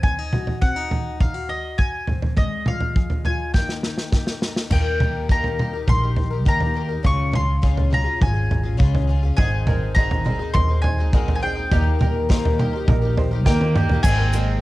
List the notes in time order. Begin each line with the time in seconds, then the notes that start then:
Already playing: G#2
0.03 C4 G#5, kick, floor tom
0.19 D#4
0.33 D#3 F#4, floor tom, mid tom
0.47 floor tom
0.62 C4 F#5, kick
0.76 D#4
0.90 D#2, floor tom
1.20 D#4 F5, kick, floor tom
1.34 F#4
1.49 D#3 D#5
1.78 G#5, kick
2.07 G#2 C4, floor tom
2.22 floor tom
2.37 C#3 G#3 D#5, kick, floor tom
2.66 F4 F5, floor tom, mid tom
2.80 floor tom
2.96 F3 G#4, kick
3.10 floor tom
3.25 F4 G#5, floor tom
3.54 D#2 D#3 A#3 G5, kick, snare
3.58 D#4 G4
3.69 snare
3.83 D#4, snare
3.98 snare
4.12 D#3 G4, kick, snare
4.27 snare
4.42 D#4, snare
4.57 snare
4.70 D#2 D#3 A#3 D#4 G4 A#4 G5, kick, floor tom, crash
5.00 A#3 D#4 G4 A#4, floor tom, mid tom
5.29 D#3 A#3 D#4 G4 A#4 A#5, kick
5.44 floor tom
5.58 A#3 D#4 G4 A#4, mid tom
5.73 D#4 G4 A#4
5.88 A#1 C6, kick, floor tom, mid tom
6.01 D#4 G4 A#4
6.16 floor tom
6.30 D#4 G4 A#4
6.45 D#2 D#3 A#3 D#4 G4 A#4 A#5, kick
6.60 floor tom
6.74 A#3 D#4 G4 A#4
6.89 D#4 G4 A#4
7.03 C#2 C#3 G#3 C#4 F4 G#4 C#6, kick, floor tom
7.32 G#3 C#4 F4 G#4 C6, floor tom, mid tom
7.62 C#3 G#3 C#4 F4 G#4, kick
7.77 floor tom
7.90 G#3 C#4 F4 G#4 A#5, mid tom
8.04 C#4 F4 G#4
8.21 G#1 G#5, kick, floor tom, mid tom
8.33 C#4 F4 G#4
8.51 floor tom
8.63 C#4 F4 G#4
8.77 C#2 C#3 G#3 C#4 F4 G#4, kick
8.95 floor tom
9.07 G#3 C#4 F4 G#4
9.23 C#4 F4 G#4
9.37 G#1 G#2 D#3 G#3 C4 D#4 G#4 D#5 G#5, kick, floor tom
9.67 G#3 C4 D#4 G#4 A#4 D#5, floor tom, mid tom
9.95 G#2 D#3 G#3 C4 D#4 G#4 C5 D#5 A#5, kick
10.11 floor tom
10.24 G#3 C4 D#4 G#4 A#4 D#5, mid tom
10.39 G#3 C4 D#4 G#4
10.54 D#2 C4 D#4 G#4 A#4 D#5 C6, kick, floor tom, mid tom
10.68 G#3 C4 D#4 G#4
10.82 C4 D#4 G#4 C5 D#5 G#5, floor tom
10.99 G#3 C4 D#4 G#4
11.13 A#1 G#2 D#3 G#3 C4 D#4 G#4 A#4 D#5, kick
11.28 floor tom
11.35 G#5
11.40 G#3 C4 D#4 G#4 D#5 G5
11.55 G#3 C4 D#4 G#4
11.71 D#2 D#3 A#3 D#4 G4 A#4 D#5, kick, floor tom
11.99 A#3 D#4 G4 A#4 D#5, floor tom, mid tom
12.29 D#3 A#3 D#4 G4 A#4 C5 D#5, kick, snare
12.45 floor tom
12.58 A#3 D#4 G4 A#4 D#5, mid tom
12.73 G4 A#4
12.77 D#4
12.88 A#1 A#3 D#4 G4 A#4 D#5, kick, floor tom, mid tom
13.02 D#4 G4 A#4
13.17 A#3 D#4 G4 C5 D#5, floor tom
13.31 D#4 G4 A#4
13.45 D#2 D#3 A#3 D#4 G4 A#4 D#5 G5, kick, snare
13.61 high tom
13.75 A#3 D#4 G4 A#4 D#5, mid tom
13.90 G4 A#4, floor tom
13.94 D#4
14.03 G#1 G#2 C3 D#3 G#3 A#3 C4 D#4 G#4 A#4 D#5 G#5, kick, crash, shaker
14.07 A#4
14.18 G#3 C4 D#4 A#4
14.32 G#3 C4 D#4 A#4 D#5, ride, shaker